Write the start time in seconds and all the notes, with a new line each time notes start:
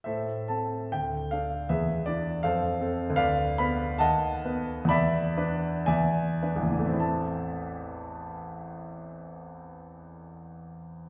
0.04 A2 A4 C5 E5
0.48 C4 A4 A5
0.92 D2 G5
1.31 D4 A4 F5
1.69 E2 G#4 B4 E5
2.06 D4 E4 D5
2.43 F2 A4 C5 F5
2.81 C4 A4
3.10 D2
3.16 B4 D5 F5
3.58 B3 B4 B5
3.98 D#2 D#5 F#5 A5
4.45 B3 B4
4.85 E2 B5
4.89 D5 E5
5.37 D4 B4
5.86 E2 D5 E5 G#5
6.42 D4 B4
6.56 A1
6.63 E2
6.71 E3
6.79 A3
6.86 C4
6.94 E4
7.00 A5